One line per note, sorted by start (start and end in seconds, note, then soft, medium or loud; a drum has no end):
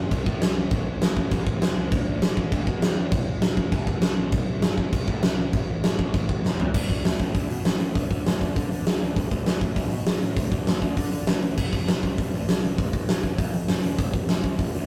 0.11 0.24 C2 loud
0.11 kick loud
0.11 crash medium
0.26 0.39 A2 medium
0.26 kick medium
0.41 0.65 C2 loud
0.41 snare loud
0.41 crash medium
0.71 0.96 A1 loud
0.71 kick loud
0.71 crash medium
1.01 1.14 A1 medium
1.01 snare loud
1.01 crash medium
1.17 1.29 A1 loud
1.17 kick medium
1.31 1.44 A1 loud
1.31 kick loud
1.31 crash medium
1.47 1.59 A1 medium
1.47 kick medium
1.62 1.74 E1 medium
1.62 snare loud
1.62 crash medium
1.76 1.92 C#2 medium
1.92 2.04 D2 loud
1.92 kick loud
1.92 crash medium
2.07 2.19 D2 medium
2.21 2.46 A1 medium
2.21 snare loud
2.21 crash medium
2.37 kick medium
2.52 2.64 D2 loud
2.52 kick loud
2.52 crash medium
2.67 2.79 B2 medium
2.67 kick medium
2.82 3.06 E2 loud
2.82 snare loud
2.82 crash medium
3.12 3.37 F1 medium
3.12 kick loud
3.12 crash medium
3.41 3.54 F1 medium
3.41 snare loud
3.41 crash medium
3.57 3.69 F1 loud
3.57 kick medium
3.72 3.85 F1 loud
3.72 kick loud
3.72 crash medium
3.87 4.00 F1 medium
3.87 kick medium
4.02 4.15 C2 medium
4.02 snare loud
4.02 crash medium
4.17 4.30 B1 medium
4.32 4.45 C2 medium
4.32 kick loud
4.32 crash medium
4.48 4.60 C2 medium
4.62 4.87 G1 medium
4.62 snare loud
4.62 crash medium
4.78 kick medium
4.93 5.05 C2 loud
4.93 kick loud
4.93 crash medium
5.08 5.20 A2 medium
5.08 kick medium
5.23 5.48 C2 medium
5.23 snare loud
5.23 crash medium
5.53 5.78 A1 loud
5.53 kick loud
5.53 crash medium
5.83 5.96 A1 medium
5.83 snare loud
5.83 crash medium
5.99 6.11 A1 loud
5.99 kick medium
6.14 6.26 A1 loud
6.14 kick loud
6.14 crash medium
6.29 6.42 A1 medium
6.29 kick medium
6.44 6.56 E1 medium
6.44 snare medium
6.59 6.71 E2 medium
6.59 floor tom medium
6.74 6.86 D2 medium
6.74 kick loud
6.74 crash loud
6.89 7.02 D2 medium
6.89 kick medium
6.89 open hi-hat medium
7.04 7.16 D2 medium
7.04 snare loud
7.04 open hi-hat medium
7.20 7.32 A2 medium
7.20 kick medium
7.20 open hi-hat medium
7.35 7.47 D2 loud
7.35 kick medium
7.35 open hi-hat medium
7.50 7.62 B2 medium
7.50 open hi-hat medium
7.65 7.77 A1 medium
7.65 snare loud
7.65 open hi-hat medium
7.80 7.92 A2 medium
7.80 open hi-hat medium
7.95 8.07 D2 loud
7.95 kick loud
7.95 open hi-hat medium
8.10 8.22 D2 medium
8.10 kick medium
8.10 open hi-hat medium
8.26 8.38 D2 medium
8.26 snare medium
8.26 open hi-hat medium
8.41 8.53 D2 medium
8.41 kick medium
8.41 open hi-hat medium
8.56 8.68 D3 loud
8.56 kick loud
8.56 open hi-hat medium
8.71 8.83 D3 medium
8.71 open hi-hat medium
8.86 8.98 D2 medium
8.86 snare loud
8.86 open hi-hat medium
9.02 9.13 D2 medium
9.02 open hi-hat medium
9.16 9.28 D2 medium
9.16 kick loud
9.16 open hi-hat medium
9.31 9.43 D2 medium
9.31 kick medium
9.31 open hi-hat medium
9.46 9.59 D2 medium
9.46 snare loud
9.46 open hi-hat medium
9.61 9.73 A2 medium
9.61 kick medium
9.61 open hi-hat medium
9.76 9.88 D2 loud
9.76 kick loud
9.76 open hi-hat medium
9.91 10.04 B2 medium
9.91 open hi-hat medium
10.06 10.19 A1 medium
10.06 snare loud
10.06 open hi-hat medium
10.22 10.34 A2 medium
10.22 open hi-hat medium
10.37 10.49 D2 medium
10.37 kick loud
10.37 open hi-hat medium
10.52 10.64 D2 medium
10.52 kick medium
10.52 open hi-hat medium
10.67 10.79 D2 medium
10.67 snare loud
10.67 open hi-hat medium
10.82 10.94 D2 medium
10.82 kick medium
10.82 open hi-hat medium
10.97 11.09 D3 loud
10.97 kick medium
10.97 open hi-hat medium
11.11 11.24 D3 medium
11.11 open hi-hat medium
11.27 11.39 D2 medium
11.27 snare loud
11.27 open hi-hat medium
11.41 11.54 D2 medium
11.41 open hi-hat medium
11.58 11.70 F1 medium
11.58 kick loud
11.58 crash loud
11.73 11.85 F1 medium
11.73 kick medium
11.73 open hi-hat medium
11.88 12.00 F1 medium
11.88 snare loud
11.88 open hi-hat medium
12.03 12.15 C2 loud
12.03 kick medium
12.03 open hi-hat medium
12.18 12.30 F1 loud
12.18 kick medium
12.18 open hi-hat medium
12.33 12.45 D2 medium
12.33 open hi-hat medium
12.48 12.60 C2 medium
12.48 snare loud
12.48 open hi-hat medium
12.63 12.75 C2 medium
12.63 open hi-hat medium
12.78 12.90 F1 loud
12.78 kick loud
12.78 open hi-hat medium
12.93 13.05 F1 medium
12.93 kick medium
12.93 open hi-hat medium
13.08 13.20 F1 medium
13.08 snare loud
13.08 open hi-hat medium
13.23 13.35 F1 medium
13.23 kick medium
13.23 open hi-hat soft
13.38 13.50 F2 medium
13.38 kick loud
13.38 open hi-hat medium
13.53 13.65 F2 medium
13.53 open hi-hat medium
13.68 13.81 F1 medium
13.68 snare loud
13.68 open hi-hat medium
13.83 13.96 F1 medium
13.83 open hi-hat medium
13.98 14.11 F1 medium
13.98 kick loud
13.98 open hi-hat medium
14.13 14.26 F1 medium
14.13 kick medium
14.13 open hi-hat medium
14.29 14.41 F1 medium
14.29 snare loud
14.29 open hi-hat medium
14.44 14.56 C2 medium
14.44 kick medium
14.44 open hi-hat medium
14.59 14.71 F1 loud
14.59 kick loud
14.59 open hi-hat medium
14.74 14.86 D2 medium
14.74 open hi-hat medium